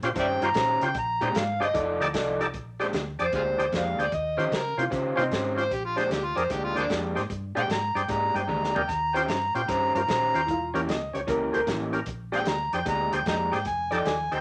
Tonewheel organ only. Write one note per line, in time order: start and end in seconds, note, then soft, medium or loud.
0.03 0.09 C#4 medium
0.03 0.10 F4 medium
0.03 0.10 G4 medium
0.03 0.10 C5 loud
0.43 0.49 C#4 medium
0.43 0.49 F4 medium
0.43 0.49 G4 medium
0.43 0.50 C5 medium
0.82 0.88 C#4 medium
0.82 0.89 F4 medium
0.82 0.89 G4 medium
0.82 0.89 C5 medium
1.22 1.28 D4 medium
1.22 1.28 G4 medium
1.22 1.29 G#4 medium
1.22 1.29 C5 medium
1.60 1.67 D4 medium
1.60 1.67 G4 medium
1.60 1.68 G#4 medium
1.60 1.68 C5 medium
2.01 2.07 D#4 medium
2.01 2.07 G4 medium
2.01 2.08 A4 medium
2.01 2.08 D5 loud
2.40 2.47 D#4 medium
2.40 2.47 G4 medium
2.40 2.47 A4 medium
2.40 2.47 D5 loud
2.80 2.86 D4 medium
2.80 2.87 G4 medium
2.80 2.87 G#4 medium
2.80 2.87 C5 medium
3.19 3.26 D4 medium
3.19 3.26 G4 medium
3.19 3.26 G#4 medium
3.19 3.26 D5 medium
3.58 3.65 D4 medium
3.58 3.66 G4 medium
3.58 3.66 G#4 medium
3.58 3.66 C5 medium
3.99 4.05 D4 medium
3.99 4.05 G4 medium
3.99 4.06 G#4 medium
3.99 4.06 C5 medium
4.37 4.44 C#4 medium
4.37 4.45 F4 medium
4.37 4.45 G4 medium
4.37 4.45 C5 medium
4.78 4.84 C#4 medium
4.78 4.85 F4 medium
4.78 4.85 G4 medium
4.78 4.85 C5 medium
5.16 5.23 C#4 medium
5.16 5.24 F4 medium
5.16 5.24 G4 medium
5.16 5.24 C5 medium
5.56 5.64 C#4 medium
5.56 5.64 F4 medium
5.56 5.64 G4 medium
5.56 5.64 C5 medium
5.96 6.03 D4 medium
5.96 6.04 G4 medium
5.96 6.04 G#4 medium
5.96 6.04 C5 medium
6.35 6.43 D4 medium
6.35 6.43 G4 medium
6.35 6.43 G#4 medium
6.35 6.44 A#4 medium
6.75 6.83 D4 medium
6.75 6.83 G4 medium
6.75 6.83 G#4 medium
6.75 6.83 C5 medium
7.15 7.22 D4 medium
7.15 7.22 G4 medium
7.15 7.23 G#4 medium
7.15 7.23 C5 medium
7.55 7.62 D4 medium
7.55 7.63 G4 medium
7.55 7.63 G#4 medium
7.55 7.63 C5 medium
7.95 8.02 D4 medium
7.95 8.02 G4 medium
7.95 8.03 G#4 medium
7.95 8.03 C5 medium
8.36 8.42 D4 medium
8.36 8.42 G4 medium
8.36 8.43 G#4 medium
8.36 8.43 C5 medium
8.75 8.82 D4 medium
8.75 8.82 G4 medium
8.75 8.82 G#4 medium
8.75 8.82 A#4 medium
9.16 9.22 C#4 medium
9.16 9.22 F4 medium
9.16 9.22 G4 medium
9.16 9.23 C5 medium
9.55 9.61 C#4 medium
9.55 9.62 F4 medium
9.55 9.62 G4 medium
9.55 9.62 C5 medium
9.95 10.01 C#4 medium
9.95 10.02 F4 medium
9.95 10.02 G4 medium
9.95 10.02 A#4 medium
10.34 10.41 C#4 medium
10.34 10.41 F4 medium
10.34 10.41 G4 medium
10.34 10.42 C5 medium
10.74 10.81 C#4 medium
10.74 10.81 G4 medium
10.74 10.81 A#4 medium
11.13 11.20 C#4 medium
11.13 11.21 G4 medium
11.13 11.21 C#5 loud
11.53 11.60 C#4 medium
11.53 11.60 G4 medium
11.53 11.61 C5 medium
11.93 12.00 C#4 medium
11.93 12.00 G4 medium
11.93 12.00 A#4 medium
12.32 12.39 D4 medium
12.32 12.39 G4 medium
12.32 12.40 G#4 medium
12.32 12.40 C5 medium
12.73 12.80 D4 medium
12.73 12.80 G4 medium
12.73 12.80 G#4 medium
12.73 12.80 C5 medium
13.12 13.19 D4 medium
13.12 13.19 G4 medium
13.12 13.19 G#4 medium
13.12 13.20 C5 medium
13.52 13.59 D4 medium
13.52 13.59 G4 medium
13.52 13.59 G#4 medium
13.52 13.59 C5 medium
13.91 13.98 D#4 medium
13.91 13.99 G4 medium
13.91 13.99 A4 medium
13.91 13.99 D5 medium
14.32 14.38 D#4 medium
14.32 14.38 G4 medium
14.32 14.38 A4 medium
14.32 14.39 C5 medium